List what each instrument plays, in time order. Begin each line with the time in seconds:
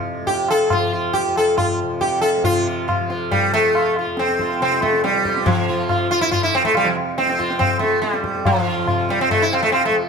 Already playing: tanpura F2 C3 F3
0.21 tanpura F3
0.27 sitar G4, tabla ke
0.48 sitar A4, tabla na
0.70 tanpura F3, sitar F4, tabla na, tabla ge
0.93 sitar F4
1.13 sitar G4, tabla ke
1.27 tanpura F2
1.36 sitar A4, tabla na
1.57 sitar F4, tabla na, tabla ge
1.83 tanpura C3
2.01 sitar G4, tabla ke
2.21 sitar A4, tabla na
2.37 tanpura F3
2.44 tanpura C3, sitar F4, tabla tin, tabla ge
2.67 sitar F4
2.88 sitar F4, tabla na, tabla ge
3.01 tanpura F3
3.10 sitar F4, tabla te
3.31 sitar G3, tabla tin, tabla ge
3.54 tanpura F3, sitar A3
3.75 sitar F4, tabla na
3.96 sitar F4, tabla na
4.07 tanpura F2
4.17 sitar C4, tabla te
4.29 tabla te
4.39 sitar F4, tabla ke
4.50 tabla te
4.61 tanpura C3, sitar C4, tabla te
4.72 tabla te
4.82 sitar A3, tabla ke
4.93 tabla te
5.04 sitar G3, tabla te
5.14 tanpura F3, tabla te
5.25 sitar F4, tabla ke
5.37 tabla te
5.46 sitar F3, tabla tin, tabla ge
5.69 tanpura F3, sitar F4
5.89 sitar F4, tabla na, tabla ge
6.11 sitar F4
6.20 tanpura F2, sitar E4
6.32 sitar F4, tabla tin, tabla ge
6.43 sitar E4
6.54 sitar C4, tabla na
6.65 sitar A3, tabla ke
6.73 tanpura C3, tabla na
6.77 sitar G3
6.84 sitar F3
6.97 tabla na
7.18 sitar C4, tabla te
7.26 tanpura F3, tabla te
7.39 sitar F4, tabla ke
7.51 tabla te
7.59 sitar C4, tabla na, tabla ge
7.79 tanpura F3, sitar A3, tabla te
8.02 sitar G3, tabla te
8.14 tabla te
8.24 tabla ke
8.33 tanpura F2, tabla te
8.45 sitar F3, tabla tin, tabla ge
8.67 sitar F4
8.85 tanpura C3, sitar F4, tabla na, tabla ge
9.09 sitar G3, tabla te
9.21 sitar C4
9.31 sitar A3, tabla tin, tabla ge
9.38 tanpura F3
9.42 sitar E4
9.53 sitar C4, tabla na
9.63 sitar A3
9.72 sitar C4, tabla na
9.85 sitar A3
9.91 tanpura F3